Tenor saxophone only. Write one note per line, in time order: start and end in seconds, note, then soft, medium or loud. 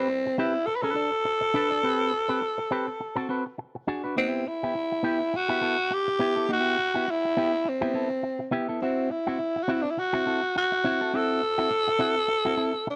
0.00 0.40 C4 loud
0.39 0.68 E4 medium
0.66 0.77 A4 loud
0.76 0.83 B4 medium
0.82 3.57 A4 loud
4.18 4.49 C4 medium
4.48 5.38 E4 loud
5.37 5.95 F#4 loud
5.94 6.50 G4 loud
6.53 7.12 F#4 loud
7.11 7.70 E4 loud
7.69 8.54 C4 medium
8.81 9.12 C4 medium
9.11 9.65 E4 medium
9.63 9.73 F#4 medium
9.72 9.84 E4 medium
9.82 9.92 D4 medium
9.91 10.01 E4 medium
10.00 10.56 F#4 loud
10.58 11.17 F#4 medium
11.16 12.88 A4 loud
12.90 12.96 D4 medium